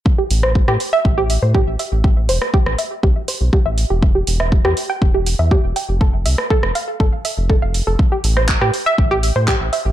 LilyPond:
<<
  \new Staff \with { instrumentName = "Synth pluck" } { \time 4/4 \key a \minor \tempo 4 = 121 r16 g'16 r16 c''16 r16 g'16 r16 e''16 r16 g'16 r16 c''16 g'16 r16 e''16 r16 | g'16 r16 c''16 r16 g'16 r16 e''16 r16 g'16 r16 c''16 r16 g'16 e''16 r16 g'16 | r16 g'16 r16 e''16 r16 g'16 r16 g''16 r16 g'16 r16 e''16 g'16 r16 g''16 r16 | a'16 r16 e''16 r16 a'16 r16 f''16 r16 a'16 r16 e''16 r16 a'16 f''16 r16 a'16 |
r16 g'16 r16 c''16 r16 g'16 r16 e''16 r16 g'16 r16 c''16 g'16 r16 e''16 r16 | }
  \new Staff \with { instrumentName = "Analog synth bass" } { \clef bass \time 4/4 \key a \minor r8 a,,8. a,16 r8 a,,8. a,8 a,,16 r16 a,,16~ | a,,8 e,,16 r8 a,,16 r8 b,,16 r8 b,,16 r16 a,,8 e,,16~ | e,,8 e,,8. e,16 r8 e,,8. e,8 e,,16 r16 f,,16~ | f,,8 c,16 r8 f,,16 r8 g,,16 r8 f,,8 f,,8 f,,16 |
r8 a,,8. a,16 r8 a,,8. a,8 a,,16 r16 a,,16 | }
  \new DrumStaff \with { instrumentName = "Drums" } \drummode { \time 4/4 bd8 hho16 ss16 bd16 ss16 hho8 bd8 hho8 bd8 hho8 | bd8 hho16 ss16 bd16 ss16 hho8 bd8 hho8 bd8 hho8 | bd8 hho16 ss16 bd16 ss16 hho8 bd8 hho8 bd8 hho8 | bd8 hho16 ss16 bd16 ss16 hho8 bd8 hho8 bd8 hho8 |
bd8 hho16 ss16 <hc bd>16 ss16 hho8 bd8 hho8 <hc bd>8 hho8 | }
>>